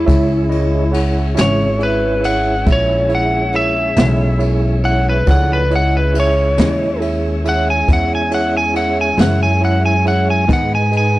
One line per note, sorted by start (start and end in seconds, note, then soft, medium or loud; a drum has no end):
0.00 0.93 E4 medium
0.06 1.34 C#2 medium
0.06 5.24 G#3 medium
0.06 5.24 C#4 medium
0.06 0.40 E4 medium
0.06 5.23 E4 medium
0.06 0.40 G#4 medium
0.06 0.40 C#5 medium
0.06 0.40 E5 medium
0.06 kick loud
0.06 ride medium
0.49 0.83 E4 medium
0.49 0.83 G#4 medium
0.49 0.83 C#5 medium
0.49 0.83 D#5 medium
0.49 ride medium
0.92 1.26 E4 medium
0.92 1.26 G#4 medium
0.92 1.26 C#5 medium
0.92 1.27 F#5 medium
0.92 ride medium
1.35 2.64 G#1 medium
1.35 1.65 C#4 medium
1.35 1.69 E4 medium
1.35 1.69 G#4 medium
1.35 1.69 C#5 medium
1.35 1.70 E5 medium
1.35 snare loud
1.35 ride medium
1.39 1.65 C#3 medium
1.39 1.65 E3 medium
1.39 1.65 G#3 medium
1.39 1.82 C#5 medium
1.79 2.13 E4 medium
1.79 2.13 G#4 soft
1.79 2.13 C#5 medium
1.79 2.13 E5 medium
1.79 ride medium
1.83 2.25 B4 medium
2.20 2.55 E4 medium
2.20 2.55 G#4 soft
2.20 2.55 C#5 soft
2.20 2.56 E5 medium
2.20 ride medium
2.25 2.67 F#5 medium
2.66 3.94 A#1 medium
2.66 3.00 E4 soft
2.66 3.00 G#4 soft
2.66 3.00 C#5 soft
2.66 3.00 E5 medium
2.66 kick loud
2.66 ride medium
2.72 3.13 C#5 loud
3.09 3.43 E4 medium
3.09 3.43 G#4 soft
3.09 3.43 C#5 soft
3.09 3.43 E5 medium
3.09 ride medium
3.15 3.55 F#5 medium
3.52 3.87 E4 medium
3.52 3.87 G#4 medium
3.52 3.87 C#5 soft
3.52 3.88 E5 medium
3.52 4.40 E5 loud
3.52 ride medium
3.96 5.24 B1 loud
3.96 4.25 C#3 medium
3.96 4.25 E3 medium
3.96 4.25 G#3 medium
3.96 4.24 C#4 medium
3.96 4.30 E4 medium
3.96 4.30 G#4 soft
3.96 4.30 C#5 medium
3.96 4.30 E5 medium
3.96 snare loud
3.96 ride medium
4.38 4.72 E4 medium
4.38 4.73 G#4 medium
4.38 4.73 C#5 medium
4.38 4.73 E5 medium
4.38 ride medium
4.83 5.17 E4 medium
4.83 5.17 G#4 medium
4.83 5.17 C#5 medium
4.83 5.17 E5 medium
4.83 5.06 F#5 loud
4.83 ride medium
5.09 5.29 B4 medium
5.26 6.54 C#2 medium
5.26 5.71 F3 medium
5.26 5.71 A3 medium
5.26 5.71 D4 medium
5.26 5.60 E4 medium
5.26 5.60 G#4 medium
5.26 5.61 C#5 medium
5.26 5.61 F#5 medium
5.26 kick medium
5.26 ride medium
5.31 5.51 F#5 medium
5.53 5.73 B4 medium
5.70 10.45 G#3 medium
5.70 10.45 C#4 medium
5.70 6.04 E4 medium
5.70 10.45 E4 medium
5.70 6.04 G#4 medium
5.70 6.04 C#5 soft
5.70 6.04 D#5 medium
5.70 ride medium
5.76 5.95 F#5 loud
5.97 6.16 B4 medium
6.14 6.47 E4 medium
6.14 6.47 G#4 medium
6.14 6.48 C#5 soft
6.14 6.48 E5 medium
6.14 ride medium
6.20 7.02 C#5 medium
6.57 7.85 D#2 medium
6.57 6.85 C#3 medium
6.57 6.85 E3 medium
6.57 6.85 G#3 medium
6.57 6.84 C#4 medium
6.57 6.90 E4 medium
6.57 6.91 G#4 medium
6.57 6.91 C#5 medium
6.57 6.91 D#5 medium
6.57 snare loud
6.57 ride medium
7.00 7.34 E4 soft
7.00 7.34 G#4 medium
7.00 7.34 C#5 soft
7.00 7.35 E5 medium
7.00 ride medium
7.44 7.77 E4 medium
7.44 7.78 G#4 soft
7.44 7.78 C#5 medium
7.44 7.78 E5 medium
7.44 ride medium
7.49 7.68 F#5 loud
7.70 7.90 G#5 medium
7.88 9.15 E2 medium
7.88 8.21 E4 medium
7.88 8.21 G#4 medium
7.88 8.22 C#5 soft
7.88 8.22 E5 medium
7.88 kick loud
7.88 ride medium
7.93 8.12 F#5 medium
8.15 8.34 G#5 medium
8.31 8.64 E4 medium
8.31 8.64 G#4 medium
8.31 8.65 C#5 medium
8.31 8.65 E5 medium
8.31 8.54 F#5 loud
8.31 ride medium
8.57 8.76 G#5 loud
8.74 9.07 E4 medium
8.74 9.08 G#4 medium
8.74 9.08 C#5 soft
8.74 9.08 E5 medium
8.74 8.97 F#5 medium
8.74 ride medium
9.01 9.20 G#5 medium
9.17 10.45 F#2 medium
9.17 9.46 C#3 medium
9.17 9.45 E3 medium
9.17 9.45 G#3 medium
9.17 9.44 C#4 medium
9.17 9.51 E4 medium
9.17 9.51 G#4 medium
9.17 9.51 C#5 medium
9.17 9.52 E5 medium
9.17 9.41 F#5 medium
9.17 snare loud
9.17 ride medium
9.43 9.63 G#5 medium
9.61 9.94 E4 medium
9.61 9.94 G#4 medium
9.61 9.94 C#5 medium
9.61 9.95 E5 medium
9.61 9.85 F#5 medium
9.61 ride medium
9.86 10.06 G#5 medium
10.05 10.38 E4 medium
10.05 10.38 G#4 soft
10.05 10.39 C#5 medium
10.05 10.39 E5 medium
10.05 10.28 F#5 loud
10.05 ride medium
10.30 10.50 G#5 medium
10.47 10.74 G#2 medium
10.47 11.19 G#2 medium
10.47 10.75 D#3 medium
10.47 11.19 G#3 medium
10.47 10.75 B3 medium
10.47 10.81 D#4 medium
10.47 10.75 D#4 medium
10.47 11.19 D#4 medium
10.47 10.82 G#4 medium
10.47 10.82 B4 medium
10.47 11.19 B4 medium
10.47 10.82 D#5 medium
10.47 kick loud
10.47 ride medium
10.53 10.72 F#5 medium
10.75 10.94 G#5 medium
10.92 11.19 D#4 medium
10.92 11.19 G#4 medium
10.92 11.19 B4 medium
10.92 11.19 D#5 medium
10.92 ride medium
10.97 11.19 G#5 medium